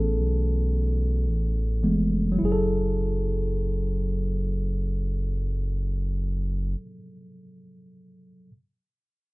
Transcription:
0.00 0.20 A1 medium
0.00 1.82 E3 soft
0.00 1.82 A3 soft
0.00 1.82 B3 soft
0.00 1.80 C#4 medium
0.00 2.38 G#4 soft
0.00 1.79 A4 medium
0.18 1.29 B1 medium
1.27 1.86 A1 medium
1.83 2.38 F1 medium
1.83 2.38 E3 soft
1.83 2.38 G#3 soft
1.83 2.38 A3 soft
1.83 2.38 B3 soft
2.32 6.78 F#3 medium
2.39 6.75 F#1 medium
2.39 6.85 E4 medium
2.45 6.91 G#4 medium
2.52 6.98 A4 medium

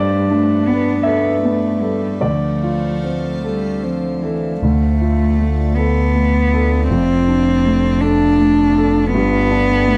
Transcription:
0.00 2.19 G2 medium
0.00 0.32 G3 medium
0.00 4.59 A3 medium
0.00 2.22 D4 medium
0.00 2.22 B4 medium
0.00 1.00 D5 medium
0.30 0.68 A3 medium
0.30 0.89 D4 soft
0.67 1.03 B3 medium
0.67 1.28 B3 soft
1.03 1.41 B3 soft
1.03 1.67 A4 soft
1.03 2.18 E5 medium
1.42 1.83 A3 soft
1.42 2.06 B3 soft
1.81 2.23 G3 soft
1.81 2.22 A4 soft
2.21 4.58 D2 soft
2.21 3.35 F3 soft
2.21 4.62 C5 medium
2.21 4.19 D5 medium
2.21 4.63 F5 medium
2.63 3.28 F4 soft
3.04 3.68 C4 soft
3.44 3.85 G3 soft
3.44 4.07 A4 soft
3.83 4.24 F3 soft
3.83 4.47 C4 soft
4.22 4.60 E3 soft
4.22 4.62 A4 soft
4.61 6.91 D2 medium
4.61 6.86 D2 soft
4.61 5.77 A3 medium
4.61 9.08 A3 medium
4.61 9.08 F4 medium
4.61 9.08 D5 medium
5.01 5.62 F4 soft
5.39 5.99 A3 soft
5.76 6.88 B3 medium
5.76 6.37 A4 soft
6.15 6.75 A3 soft
6.53 6.90 A4 soft
6.89 9.13 F1 medium
6.89 9.08 F2 soft
6.89 8.02 C4 medium
7.28 7.87 D4 soft
7.65 8.24 A3 soft
8.01 9.11 D4 medium
8.01 8.60 A4 soft
8.39 8.97 A3 soft
8.77 9.13 A4 soft
9.11 9.97 G1 medium
9.11 9.97 G2 medium
9.11 9.97 A3 medium
9.11 9.97 B3 medium
9.11 9.97 G4 medium
9.11 9.97 D5 medium
9.51 9.97 D4 soft
9.87 9.97 A3 soft

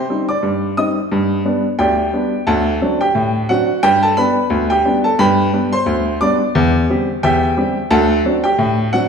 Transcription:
0.00 0.25 C5 medium
0.00 0.25 G5 medium
0.00 0.26 C6 loud
0.09 0.28 G3 medium
0.09 0.28 C4 medium
0.09 0.29 D#4 medium
0.29 0.74 D5 medium
0.29 0.67 D6 medium
0.43 0.72 G2 medium
0.77 0.96 G3 medium
0.77 0.96 C4 medium
0.77 0.97 D#4 medium
0.77 1.09 D#5 medium
0.77 1.05 D#6 loud
1.12 1.40 G2 loud
1.45 1.64 G3 medium
1.45 1.64 B3 medium
1.45 1.64 D4 medium
1.79 2.08 D2 medium
1.79 2.44 G4 medium
1.79 2.44 D5 medium
1.79 2.44 G5 loud
2.13 2.32 G3 medium
2.13 2.32 B3 medium
2.13 2.32 D4 medium
2.47 2.76 D2 loud
2.47 2.97 A4 medium
2.47 2.97 F#5 medium
2.47 2.98 A5 loud
2.81 3.00 F#3 medium
2.81 3.00 C4 medium
2.81 3.00 D4 medium
3.01 3.46 G4 medium
3.01 3.47 G5 loud
3.15 3.44 A2 medium
3.49 3.68 F#3 medium
3.49 3.68 C4 medium
3.49 3.69 D4 medium
3.49 3.81 F#4 medium
3.49 3.81 F#5 loud
3.83 4.12 G2 loud
3.83 4.02 G4 medium
3.83 4.03 G5 loud
4.03 4.17 A4 medium
4.03 4.17 A5 loud
4.17 4.36 G3 medium
4.17 4.36 B3 medium
4.17 4.36 D4 medium
4.17 4.68 B4 medium
4.17 4.60 B5 loud
4.50 4.79 D2 loud
4.70 5.03 G4 medium
4.70 4.98 G5 loud
4.84 5.03 G3 medium
4.84 5.04 B3 medium
4.84 5.04 D4 medium
5.04 5.18 A4 medium
5.04 5.19 A5 loud
5.19 5.48 G2 loud
5.19 5.70 B4 medium
5.19 5.70 G5 loud
5.19 5.70 B5 loud
5.53 5.72 G3 medium
5.53 5.72 B3 medium
5.53 5.72 D4 medium
5.73 6.18 C5 medium
5.73 6.18 C6 loud
5.86 6.15 D2 loud
6.21 6.40 G3 medium
6.21 6.40 B3 medium
6.21 6.40 D4 medium
6.21 6.53 D5 medium
6.21 6.48 D6 loud
6.55 6.84 E2 loud
6.90 7.08 G3 medium
6.90 7.08 C4 medium
6.90 7.09 G4 medium
7.23 7.52 E2 medium
7.23 7.56 G4 medium
7.23 7.88 E5 medium
7.23 7.88 G5 loud
7.57 7.75 G3 medium
7.57 7.76 C4 medium
7.57 7.76 G4 medium
7.91 8.20 D2 loud
7.91 8.41 A4 loud
7.91 8.41 F#5 medium
7.91 8.34 A5 loud
8.25 8.43 F#3 medium
8.25 8.44 C4 medium
8.25 8.44 D4 medium
8.44 8.90 G4 medium
8.44 8.90 G5 loud
8.58 8.87 A2 loud
8.93 9.08 F#3 medium
8.93 9.08 C4 medium
8.93 9.08 D4 medium
8.93 9.08 F#4 medium
8.93 9.08 F#5 loud

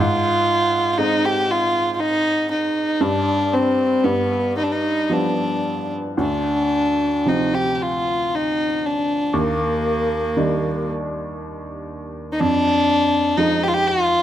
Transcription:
0.00 2.97 G#2 medium
0.00 0.93 F4 medium
0.93 0.99 F4 medium
0.98 2.96 G#3 soft
0.98 2.96 C4 soft
0.98 1.27 D#4 medium
0.98 2.97 D#4 soft
1.25 1.53 G4 medium
1.51 1.94 F4 medium
1.94 2.01 F4 medium
2.00 2.50 D#4 medium
2.51 3.03 D#4 medium
3.01 4.01 G2 medium
3.01 3.55 D4 medium
3.53 4.05 C4 medium
4.04 6.14 G2 medium
4.04 4.56 B3 medium
4.57 4.65 D#4 medium
4.64 4.74 D4 medium
4.72 5.14 D#4 medium
5.10 6.15 F3 soft
5.10 6.15 G3 soft
5.10 6.16 B3 soft
5.10 5.93 D4 medium
6.17 9.30 D2 medium
6.17 7.30 D4 medium
7.25 9.30 C3 soft
7.25 9.30 F3 soft
7.25 9.30 C4 soft
7.25 7.56 D#4 medium
7.54 7.74 G4 medium
7.74 7.84 G4 medium
7.82 8.37 F4 medium
8.35 8.88 D#4 medium
8.86 9.40 D4 medium
9.33 12.35 D#2 medium
9.38 10.91 A#3 medium
10.37 12.35 D#3 soft
10.37 12.35 G3 soft
10.37 12.35 D4 soft
12.33 12.42 D#4 medium
12.40 14.23 F2 medium
12.40 13.39 D4 loud
13.37 14.23 F3 medium
13.37 14.23 G#3 soft
13.37 13.65 D#4 medium
13.37 14.23 D#4 medium
13.63 13.70 G4 medium
13.68 13.75 F4 medium
13.74 13.89 G4 medium
13.88 14.23 F4 medium

